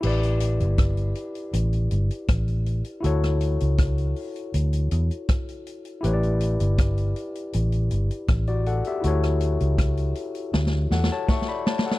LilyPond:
<<
  \new Staff \with { instrumentName = "Tine electric piano" } { \time 4/4 \key d \major \tempo 4 = 80 << { r1 | r1 | r2. r16 <fis' d''>16 <a' fis''>16 <g' e''>16~ | <g' e''>16 r2 r16 <a' fis''>16 <cis'' a''>16 <e'' cis'''>16 <d'' b''>16 <cis'' a''>16 <a' fis''>16 | } \\ { <e' g' b' d''>1 | <e' fis' a' cis''>1 | <e' g' b' cis'' d''>1 | <e' fis' a' cis''>1 | } >> }
  \new Staff \with { instrumentName = "Fingered electric bass" } { \clef bass \time 4/4 \key d \major a,,8. g,,8. r8 a,,8 g,,16 r16 a,,8. r16 | d,8. cis,8. r8 d,8 e,16 r4 r16 | a,,8. g,,8. r8 a,,8 g,,16 r16 a,,8. r16 | d,8. cis,8. r8 d,8 e,16 r4 r16 | }
  \new DrumStaff \with { instrumentName = "Drums" } \drummode { \time 4/4 cymc16 hh16 hh16 hh16 <hh bd ss>16 hh16 hh16 hh16 hh16 hh16 hh16 hh16 <hh bd ss>16 hh16 hh16 hh16 | hh16 <hh ss>16 hh16 hh16 <hh bd ss>16 hh16 hho16 hh16 hh16 hh16 hh16 hh16 <hh bd ss>16 hh16 hh16 hh16 | hh16 hh16 hh16 hh16 <hh bd ss>16 hh16 hh16 hh16 hh16 hh16 hh16 hh16 <hh bd ss>16 hh16 hh16 hh16 | hh16 <hh ss>16 hh16 hh16 <hh bd ss>16 hh16 hh16 hh16 \tuplet 3/2 { sn16 sn16 r16 sn16 sn16 r16 <bd sn>16 sn16 r16 sn16 sn16 sn16 } | }
>>